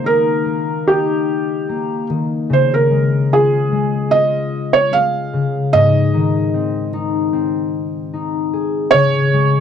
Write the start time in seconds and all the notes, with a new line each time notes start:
Already playing: D#3 A#3 F4
0.04 D#4 A#4
0.45 A#3
0.87 D#4 G4
1.69 A#3
2.10 D#3
2.50 C#3 C5
2.74 A#4
2.91 G#3
3.33 F4 G#4
3.72 G#3
4.11 F4 D#5
4.73 C#5
4.93 G#3 F5
5.33 C#3
5.73 G#2 D#5
6.14 D#3
6.54 C4
6.93 D#4
7.33 C4
8.14 D#4
8.53 G#4
8.91 C#3 C#5
9.34 G#3